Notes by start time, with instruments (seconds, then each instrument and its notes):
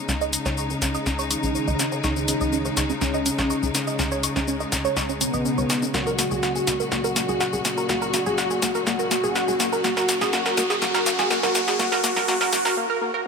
Already playing: string section C#3 G#3 D#4, synth drone C#3 C#4
0.09 analog synth bass C#2, synth arpeggio sound C#4, snare, shaker
0.21 synth arpeggio sound D#5, shaker
0.33 synth arpeggio sound C#4, closed hi-hat, shaker
0.46 analog synth bass C#2, synth arpeggio sound C#5, snare, shaker
0.57 synth arpeggio sound C#6, shaker
0.70 synth arpeggio sound C#4, mid tom, shaker
0.82 analog synth bass C#2, synth arpeggio sound C#4, snare, closed hi-hat, shaker
0.94 synth arpeggio sound D#5, shaker
1.06 analog synth bass C#2, synth arpeggio sound C#4, snare, shaker
1.19 synth arpeggio sound C#5, shaker
1.31 analog synth lead D#4, synth arpeggio sound C#6, closed hi-hat, shaker
1.43 analog synth bass B1, synth arpeggio sound C#4, shaker
1.55 synth arpeggio sound C#4, shaker
1.68 analog synth bass C#2, synth arpeggio sound D#5, shaker
1.79 synth arpeggio sound C#4, snare, closed hi-hat, shaker
1.92 synth arpeggio sound C#5, mid tom, shaker
2.04 analog synth bass C#2, analog synth lead D#4, synth arpeggio sound C#6, snare, shaker
2.16 synth arpeggio sound C#4, shaker
2.28 synth arpeggio sound C#4, closed hi-hat, shaker
2.41 analog synth bass C#2, synth arpeggio sound D#5, shaker
2.53 synth arpeggio sound C#4, shaker
2.65 synth arpeggio sound C#5, mid tom, shaker
2.77 analog synth bass C#2, synth arpeggio sound C#6, snare, closed hi-hat, shaker
2.90 synth arpeggio sound C#4, shaker
3.01 analog synth bass C#2, analog synth lead C#4, synth arpeggio sound C#4, snare, shaker
3.14 synth arpeggio sound D#5, shaker
3.26 synth arpeggio sound C#4, closed hi-hat, shaker
3.38 analog synth bass B1, synth arpeggio sound C#5, snare, shaker
3.50 synth arpeggio sound C#6, shaker
3.63 analog synth bass C#2, synth arpeggio sound C#4, shaker
3.75 synth arpeggio sound C#4, snare, closed hi-hat, mid tom, shaker
3.87 synth arpeggio sound D#5, shaker
3.99 analog synth bass C#2, synth arpeggio sound C#4, snare, shaker
4.12 synth arpeggio sound C#5, shaker
4.23 synth arpeggio sound C#6, closed hi-hat, shaker
4.36 analog synth bass C#2, synth arpeggio sound C#4, snare, shaker
4.48 synth arpeggio sound C#4, shaker
4.60 synth arpeggio sound D#5, mid tom, shaker
4.72 analog synth bass C#2, synth arpeggio sound C#4, snare, closed hi-hat, shaker
4.85 synth arpeggio sound C#5, shaker
4.97 analog synth bass C#2, synth arpeggio sound C#6, snare, shaker
5.09 synth arpeggio sound C#4, shaker
5.21 analog synth lead B3, synth arpeggio sound C#4, closed hi-hat, shaker
5.34 analog synth bass B1, synth arpeggio sound D#5, shaker
5.45 synth arpeggio sound C#4, shaker
5.58 analog synth bass C#2, synth arpeggio sound C#5, shaker
5.70 synth arpeggio sound C#6, snare, closed hi-hat, shaker
5.82 synth arpeggio sound C#4, mid tom, shaker
5.94 analog synth bass C#2, string section A#2 F#4, synth arpeggio sound A#3, analog synth lead F#4, snare, riser, shaker
6.07 synth arpeggio sound A#4, shaker
6.19 synth arpeggio sound A#3, snare, closed hi-hat, shaker
6.31 analog synth bass C#2, synth arpeggio sound G#4, shaker
6.43 synth arpeggio sound F#5, snare, shaker
6.56 synth arpeggio sound G#4, mid tom, shaker
6.67 analog synth bass C#2, synth arpeggio sound A#3, snare, closed hi-hat, shaker
6.80 synth arpeggio sound A#4, shaker
6.92 analog synth bass C#2, synth arpeggio sound A#3, analog synth lead F#4, snare, shaker
7.04 synth arpeggio sound A#4, shaker
7.16 synth arpeggio sound A#3, snare, closed hi-hat, shaker
7.29 analog synth bass C#2, synth arpeggio sound G#4, shaker
7.40 synth arpeggio sound F#5, snare, shaker
7.53 analog synth bass C#2, synth arpeggio sound G#4, shaker
7.65 synth arpeggio sound A#3, snare, closed hi-hat, mid tom, shaker
7.78 synth arpeggio sound A#4, shaker
7.89 analog synth bass C#2, synth arpeggio sound A#3, analog synth lead F#4, snare, shaker
8.02 synth arpeggio sound A#4, shaker
8.14 synth arpeggio sound A#3, snare, closed hi-hat, shaker
8.26 analog synth bass C#2, synth arpeggio sound G#4, shaker
8.38 synth arpeggio sound F#5, snare, shaker
8.51 synth arpeggio sound G#4, mid tom, shaker
8.62 analog synth bass C#2, synth arpeggio sound A#3, snare, closed hi-hat, shaker
8.75 synth arpeggio sound A#4, shaker
8.87 analog synth bass C#2, synth arpeggio sound A#3, analog synth lead F#4, snare, shaker
8.99 synth arpeggio sound A#4, shaker
9.11 synth arpeggio sound A#3, snare, closed hi-hat, shaker
9.24 analog synth bass C#2, synth arpeggio sound G#4, shaker
9.35 synth arpeggio sound F#5, snare, shaker
9.48 analog synth bass C#2, synth arpeggio sound G#4, shaker
9.60 synth arpeggio sound A#3, snare, closed hi-hat, shaker
9.73 synth arpeggio sound A#4, mid tom, shaker
9.84 analog synth bass C#2, synth arpeggio sound A#3, string section A#3, analog synth lead F#4, snare, shaker
9.97 synth arpeggio sound A#4, snare, shaker
10.09 synth arpeggio sound A#3, snare, closed hi-hat, shaker
10.21 analog synth bass C#2, synth arpeggio sound G#4, snare, shaker
10.33 synth arpeggio sound A#3, analog synth lead F#4, snare, shaker
10.46 synth arpeggio sound A#4, snare, mid tom, shaker
10.57 analog synth bass C#2, synth arpeggio sound A#3, snare, closed hi-hat, shaker
10.70 synth arpeggio sound G#4, snare, shaker
10.82 analog synth bass C#2, synth arpeggio sound A#3, analog synth lead F#4, snare, shaker
10.95 synth arpeggio sound A#4, snare, shaker
11.06 synth arpeggio sound A#3, snare, closed hi-hat, shaker
11.19 analog synth bass C#2, synth arpeggio sound G#4, snare, shaker
11.31 synth arpeggio sound A#3, analog synth lead F#4, snare, shaker
11.43 analog synth bass C#2, synth arpeggio sound A#4, snare, shaker
11.55 synth arpeggio sound A#3, snare, closed hi-hat, mid tom, shaker
11.68 synth arpeggio sound G#4, snare, shaker
11.79 analog synth bass C#2, synth arpeggio sound A#3, analog synth lead F#4, snare, shaker
11.92 synth arpeggio sound A#4, snare, shaker
12.04 synth arpeggio sound A#3, analog synth lead F#4, snare, closed hi-hat, shaker
12.16 analog synth bass C#2, synth arpeggio sound A#4, snare, shaker
12.28 synth arpeggio sound A#3, analog synth lead F#4, snare, shaker
12.41 synth arpeggio sound A#4, snare, mid tom, shaker
12.53 analog synth bass C#2, synth arpeggio sound A#3, analog synth lead F#4, snare, closed hi-hat, shaker
12.65 synth arpeggio sound A#4, snare, shaker
12.77 synth arpeggio sound A#3
12.90 synth arpeggio sound A#4
13.02 synth arpeggio sound A#3
13.14 synth arpeggio sound A#4